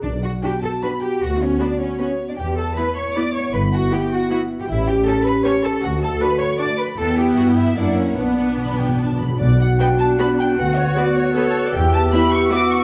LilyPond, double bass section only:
\new Staff \with { instrumentName = "Double bass section" } { \clef bass \time 3/4 \key b \minor \tempo 4 = 155 b,,4 r2 | d,4 r2 | e,4 r2 | g,,4 r2 |
a,,4 r2 | d,4 r2 | e,4 g,4 fis,4 | b,,2~ b,,8 r8 |
b,,4 r2 | d,4 r2 | e,4 r2 | }